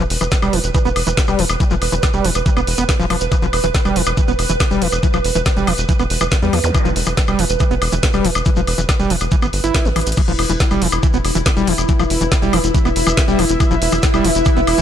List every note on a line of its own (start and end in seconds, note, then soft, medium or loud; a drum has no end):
0.00 10.18 B4 medium
0.10 0.18 E1 loud
0.10 open hi-hat loud
0.21 0.29 E1 medium
0.21 0.23 E3 medium
0.21 closed hi-hat medium
0.21 high woodblock soft
0.21 shekere medium
0.32 kick loud
0.32 snare loud
0.32 closed hi-hat soft
0.32 shekere medium
0.42 0.50 E1 medium
0.42 0.55 G3 medium
0.42 closed hi-hat soft
0.42 high woodblock medium
0.42 shekere soft
0.53 0.61 E1 loud
0.53 0.59 E3 loud
0.53 open hi-hat loud
0.64 0.72 E1 loud
0.64 closed hi-hat medium
0.64 shekere medium
0.75 0.79 E3 medium
0.75 kick loud
0.75 closed hi-hat medium
0.75 high woodblock soft
0.75 shekere medium
0.85 0.93 E1 medium
0.85 0.89 B3 medium
0.85 closed hi-hat soft
0.85 shekere soft
0.96 1.04 E1 loud
0.96 open hi-hat loud
0.96 high woodblock medium
1.07 1.14 E1 medium
1.07 1.09 E3 medium
1.07 closed hi-hat soft
1.07 shekere medium
1.17 kick loud
1.17 snare loud
1.17 closed hi-hat medium
1.17 shekere medium
1.27 1.36 E1 medium
1.27 1.40 G3 medium
1.27 closed hi-hat soft
1.27 high woodblock soft
1.27 shekere soft
1.39 1.46 E1 loud
1.39 1.45 E3 loud
1.39 open hi-hat loud
1.49 1.57 E1 medium
1.49 closed hi-hat medium
1.49 high woodblock medium
1.49 shekere medium
1.60 1.64 E3 medium
1.60 kick loud
1.60 closed hi-hat medium
1.60 shekere medium
1.71 1.79 E1 medium
1.71 1.75 F3 loud
1.71 closed hi-hat soft
1.71 shekere soft
1.82 1.89 E1 loud
1.82 open hi-hat loud
1.82 high woodblock soft
1.92 2.00 E1 medium
1.92 1.95 E3 medium
1.92 closed hi-hat medium
1.92 shekere medium
2.03 kick loud
2.03 snare loud
2.03 closed hi-hat soft
2.03 high woodblock medium
2.03 shekere medium
2.13 2.21 E1 medium
2.13 2.26 G3 medium
2.13 closed hi-hat soft
2.13 shekere soft
2.24 2.32 E1 loud
2.24 2.30 E3 loud
2.24 open hi-hat loud
2.34 2.43 E1 medium
2.34 closed hi-hat soft
2.34 high woodblock soft
2.34 shekere medium
2.46 2.50 E3 medium
2.46 kick loud
2.46 closed hi-hat medium
2.46 shekere medium
2.57 2.64 E1 medium
2.57 2.61 B3 medium
2.57 closed hi-hat soft
2.57 high woodblock medium
2.57 shekere soft
2.67 2.75 E1 loud
2.67 open hi-hat loud
2.78 2.86 E1 medium
2.78 2.84 B3 medium
2.78 closed hi-hat soft
2.78 shekere medium
2.89 kick loud
2.89 snare loud
2.89 closed hi-hat medium
2.89 high woodblock soft
2.89 shekere medium
2.99 3.07 E1 medium
2.99 3.06 F3 loud
2.99 closed hi-hat soft
2.99 shekere soft
3.10 3.18 E1 loud
3.10 3.16 F3 medium
3.10 open hi-hat loud
3.10 high woodblock medium
3.20 3.29 E1 medium
3.20 closed hi-hat medium
3.20 shekere medium
3.32 3.36 E3 medium
3.32 kick loud
3.32 closed hi-hat medium
3.32 high woodblock soft
3.32 shekere medium
3.42 3.50 E1 medium
3.42 3.46 F3 loud
3.42 closed hi-hat soft
3.42 shekere soft
3.53 3.61 E1 loud
3.53 open hi-hat loud
3.53 high woodblock medium
3.63 3.71 E1 medium
3.63 3.66 E3 medium
3.63 closed hi-hat soft
3.63 shekere medium
3.75 kick loud
3.75 snare loud
3.75 closed hi-hat soft
3.75 shekere medium
3.85 3.93 E1 medium
3.85 3.97 G3 medium
3.85 closed hi-hat soft
3.85 high woodblock soft
3.85 shekere soft
3.96 4.04 E1 loud
3.96 4.02 E3 loud
3.96 open hi-hat loud
4.06 4.14 E1 medium
4.06 closed hi-hat medium
4.06 high woodblock medium
4.06 shekere medium
4.17 4.21 E3 medium
4.17 kick loud
4.17 closed hi-hat medium
4.17 shekere medium
4.28 4.36 E1 medium
4.28 4.32 B3 medium
4.28 closed hi-hat soft
4.28 shekere soft
4.39 4.46 E1 loud
4.39 open hi-hat loud
4.39 high woodblock soft
4.49 4.57 E1 medium
4.49 4.52 E3 medium
4.49 closed hi-hat medium
4.49 shekere medium
4.60 kick loud
4.60 snare loud
4.60 closed hi-hat medium
4.60 high woodblock medium
4.60 shekere medium
4.71 4.79 E1 medium
4.71 4.83 G3 medium
4.71 closed hi-hat soft
4.71 shekere soft
4.82 4.89 E1 loud
4.82 4.88 E3 loud
4.82 open hi-hat loud
4.92 5.00 E1 medium
4.92 closed hi-hat medium
4.92 high woodblock soft
4.92 shekere medium
5.03 5.07 E3 medium
5.03 kick loud
5.03 closed hi-hat soft
5.03 shekere medium
5.14 5.21 E1 medium
5.14 5.18 F3 loud
5.14 closed hi-hat soft
5.14 high woodblock medium
5.14 shekere soft
5.24 5.32 E1 loud
5.24 open hi-hat loud
5.35 5.43 E1 medium
5.35 5.38 E3 medium
5.35 closed hi-hat medium
5.35 shekere medium
5.46 kick loud
5.46 snare loud
5.46 closed hi-hat medium
5.46 high woodblock soft
5.46 shekere medium
5.57 5.64 E1 medium
5.57 5.69 G3 medium
5.57 closed hi-hat soft
5.57 shekere soft
5.67 5.75 E1 loud
5.67 5.73 E3 loud
5.67 open hi-hat loud
5.67 high woodblock medium
5.78 5.86 E1 loud
5.78 closed hi-hat medium
5.78 shekere medium
5.89 5.93 E3 medium
5.89 kick loud
5.89 closed hi-hat medium
5.89 shekere medium
5.99 6.07 E1 medium
5.99 6.04 B3 medium
5.99 closed hi-hat soft
5.99 high woodblock soft
5.99 shekere soft
6.10 6.18 E1 loud
6.10 open hi-hat loud
6.21 6.29 E1 medium
6.21 6.23 E3 medium
6.21 high woodblock medium
6.21 shekere medium
6.31 kick loud
6.31 snare loud
6.31 closed hi-hat medium
6.31 shekere medium
6.42 6.50 E2 medium
6.42 6.55 G3 medium
6.42 closed hi-hat soft
6.42 shekere soft
6.53 6.61 E2 loud
6.53 6.59 E3 loud
6.53 open hi-hat loud
6.53 high woodblock soft
6.64 6.71 E2 medium
6.64 closed hi-hat medium
6.64 zap medium
6.64 shekere medium
6.75 6.79 E3 medium
6.75 kick loud
6.75 closed hi-hat medium
6.75 high woodblock medium
6.75 shekere medium
6.85 6.93 E1 medium
6.85 6.89 F3 loud
6.85 closed hi-hat soft
6.85 shekere soft
6.96 7.04 E1 loud
6.96 open hi-hat loud
7.06 7.14 E1 loud
7.06 7.09 E3 medium
7.06 closed hi-hat medium
7.06 high woodblock soft
7.06 shekere medium
7.17 kick loud
7.17 snare loud
7.17 closed hi-hat medium
7.17 shekere medium
7.27 7.36 E1 medium
7.27 7.40 G3 medium
7.27 closed hi-hat soft
7.27 high woodblock medium
7.27 shekere soft
7.39 7.46 E1 loud
7.39 7.45 E3 loud
7.39 open hi-hat loud
7.49 7.57 E1 loud
7.49 closed hi-hat medium
7.49 shekere medium
7.60 7.64 E3 medium
7.60 kick loud
7.60 closed hi-hat medium
7.60 high woodblock soft
7.60 shekere medium
7.71 7.79 E1 medium
7.71 7.75 B3 medium
7.71 closed hi-hat soft
7.71 shekere soft
7.82 7.89 E1 loud
7.82 open hi-hat loud
7.82 high woodblock medium
7.92 8.00 E1 medium
7.92 7.95 E3 medium
7.92 closed hi-hat medium
7.92 shekere medium
8.03 kick loud
8.03 snare loud
8.03 closed hi-hat medium
8.03 shekere medium
8.13 8.21 E1 medium
8.13 8.26 G3 medium
8.13 closed hi-hat soft
8.13 high woodblock soft
8.13 shekere soft
8.25 8.32 E1 loud
8.25 8.31 E3 loud
8.25 open hi-hat loud
8.35 8.43 E1 medium
8.35 closed hi-hat medium
8.35 high woodblock medium
8.35 shekere medium
8.45 8.50 E3 medium
8.45 kick loud
8.45 closed hi-hat medium
8.45 shekere medium
8.56 8.64 E1 medium
8.56 8.61 F3 loud
8.56 closed hi-hat soft
8.56 shekere soft
8.67 8.75 E1 loud
8.67 open hi-hat loud
8.67 high woodblock soft
8.78 8.86 E1 medium
8.78 8.80 E3 medium
8.78 closed hi-hat medium
8.78 shekere medium
8.89 kick loud
8.89 snare loud
8.89 closed hi-hat medium
8.89 high woodblock medium
8.89 shekere medium
8.99 9.07 E1 medium
8.99 9.12 G3 medium
8.99 closed hi-hat soft
8.99 shekere soft
9.10 9.18 E1 loud
9.10 9.16 E3 loud
9.10 open hi-hat loud
9.20 9.29 E1 medium
9.20 closed hi-hat medium
9.20 high woodblock soft
9.20 shekere medium
9.31 9.36 E3 medium
9.31 kick loud
9.31 closed hi-hat medium
9.31 shekere medium
9.42 9.50 G1 medium
9.42 9.46 B3 medium
9.42 closed hi-hat soft
9.42 high woodblock medium
9.42 shekere soft
9.53 9.61 G1 loud
9.53 open hi-hat medium
9.64 9.71 G1 medium
9.64 9.87 E4 medium
9.64 closed hi-hat medium
9.64 shekere medium
9.75 kick loud
9.75 snare loud
9.75 closed hi-hat medium
9.75 high woodblock soft
9.75 shekere medium
9.85 9.93 A1 medium
9.85 9.89 F3 medium
9.85 closed hi-hat soft
9.85 shekere soft
9.96 10.04 A1 loud
9.96 10.00 E3 medium
9.96 closed hi-hat medium
9.96 open hi-hat loud
9.96 high woodblock medium
10.01 closed hi-hat medium
10.07 10.14 A1 medium
10.07 closed hi-hat medium
10.07 shekere medium
10.12 closed hi-hat medium
10.16 10.21 E3 medium
10.16 14.82 E4 medium
10.16 kick loud
10.16 closed hi-hat medium
10.16 crash loud
10.16 high woodblock soft
10.16 shekere medium
10.28 10.36 E1 medium
10.28 10.32 F3 loud
10.28 closed hi-hat soft
10.28 shekere soft
10.39 10.46 E1 loud
10.39 open hi-hat loud
10.39 high woodblock medium
10.49 10.57 E1 loud
10.49 10.52 E3 medium
10.49 closed hi-hat medium
10.49 shekere medium
10.60 14.82 B4 medium
10.60 kick loud
10.60 snare loud
10.60 closed hi-hat medium
10.60 shekere medium
10.71 10.79 E1 medium
10.71 10.83 G3 medium
10.71 closed hi-hat soft
10.71 high woodblock soft
10.71 shekere soft
10.81 10.89 E1 loud
10.81 10.88 E3 loud
10.81 14.82 E5 medium
10.81 open hi-hat loud
10.92 11.00 E1 loud
10.92 closed hi-hat medium
10.92 high woodblock medium
10.92 shekere medium
11.03 11.07 E3 medium
11.03 kick loud
11.03 closed hi-hat medium
11.03 shekere medium
11.13 11.21 E1 medium
11.13 11.18 B3 medium
11.13 closed hi-hat soft
11.13 shekere soft
11.24 11.32 E1 loud
11.24 open hi-hat loud
11.24 high woodblock soft
11.35 11.43 E1 medium
11.35 11.38 E3 medium
11.35 closed hi-hat medium
11.35 shekere medium
11.46 kick loud
11.46 snare loud
11.46 closed hi-hat medium
11.46 high woodblock medium
11.46 shekere medium
11.57 11.64 E1 medium
11.57 11.69 G3 medium
11.57 closed hi-hat soft
11.57 shekere soft
11.67 11.75 E1 loud
11.67 11.73 E3 loud
11.67 open hi-hat loud
11.78 11.86 E1 medium
11.78 closed hi-hat medium
11.78 high woodblock soft
11.78 shekere medium
11.88 11.93 E3 medium
11.88 kick loud
11.88 closed hi-hat medium
11.88 shekere medium
12.00 12.07 E1 medium
12.00 12.04 F3 loud
12.00 closed hi-hat soft
12.00 high woodblock medium
12.00 shekere soft
12.10 12.18 E1 loud
12.10 open hi-hat loud
12.21 12.29 E1 medium
12.21 12.23 E3 medium
12.21 closed hi-hat medium
12.21 shekere medium
12.32 kick loud
12.32 snare loud
12.32 closed hi-hat medium
12.32 high woodblock soft
12.32 shekere medium
12.42 12.50 E1 medium
12.42 12.55 G3 medium
12.42 closed hi-hat soft
12.42 shekere soft
12.53 12.61 E1 loud
12.53 12.59 E3 loud
12.53 open hi-hat loud
12.53 high woodblock medium
12.64 12.71 E1 loud
12.64 closed hi-hat medium
12.64 shekere medium
12.75 12.79 E3 medium
12.75 kick loud
12.75 closed hi-hat medium
12.75 shekere medium
12.85 12.93 E1 medium
12.85 12.89 B3 medium
12.85 closed hi-hat soft
12.85 high woodblock soft
12.85 shekere soft
12.96 13.04 E1 loud
12.96 open hi-hat loud
13.07 13.14 E1 medium
13.07 13.09 E3 medium
13.07 closed hi-hat medium
13.07 high woodblock medium
13.07 shekere medium
13.17 kick loud
13.17 snare loud
13.17 closed hi-hat medium
13.17 shekere medium
13.28 13.36 E1 medium
13.28 13.40 G3 medium
13.28 closed hi-hat soft
13.28 shekere soft
13.39 13.46 E1 loud
13.39 13.45 E3 loud
13.39 open hi-hat loud
13.39 high woodblock soft
13.49 13.57 E1 medium
13.49 closed hi-hat medium
13.49 shekere medium
13.60 13.64 E3 medium
13.60 kick loud
13.60 closed hi-hat medium
13.60 high woodblock medium
13.60 shekere medium
13.71 13.79 E1 medium
13.71 13.75 F3 loud
13.71 closed hi-hat soft
13.71 shekere soft
13.82 13.89 E1 loud
13.82 open hi-hat loud
13.92 14.00 E1 medium
13.92 13.95 E3 medium
13.92 closed hi-hat medium
13.92 high woodblock soft
13.92 shekere medium
14.03 kick loud
14.03 snare loud
14.03 closed hi-hat medium
14.03 shekere medium
14.14 14.21 E1 medium
14.14 14.26 G3 medium
14.14 closed hi-hat soft
14.14 high woodblock medium
14.14 shekere soft
14.24 14.32 E1 loud
14.24 14.30 E3 loud
14.24 open hi-hat loud
14.35 14.43 E1 loud
14.35 closed hi-hat medium
14.35 shekere medium
14.45 14.50 E3 medium
14.45 kick loud
14.45 closed hi-hat medium
14.45 high woodblock soft
14.45 shekere medium
14.57 14.64 E1 medium
14.57 14.61 B3 medium
14.57 closed hi-hat soft
14.57 shekere soft
14.67 14.75 E1 loud
14.67 open hi-hat loud
14.67 high woodblock medium
14.78 14.82 E1 medium
14.78 14.80 E3 medium
14.78 closed hi-hat medium
14.78 shekere medium